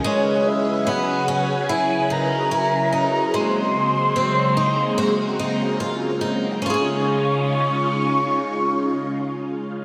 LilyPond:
<<
  \new Staff \with { instrumentName = "Soft synth lead" } { \time 4/4 \key des \major \tempo 4 = 73 cis''8 e''8 fis''4 gis''8 bes''4. | c'''2. r4 | des'''1 | }
  \new Staff \with { instrumentName = "Twelve-string acoustic guitar" } { \time 4/4 \key des \major gis4 b8 cis'8 e'8 ees'8 e'8 ees'8 | aes4 c'8 ees'8 ges'8 ees'8 f'8 ees'8 | <des' f' aes' des''>1 | }
  \new Staff \with { instrumentName = "String machine" } { \time 4/4 \key des \major << { <fis des' gis' b'>1 | <aes bes c'>1 | <des aes des' ees' f'>1 | } \\ { cis1~ | cis1 | r1 | } >> }
>>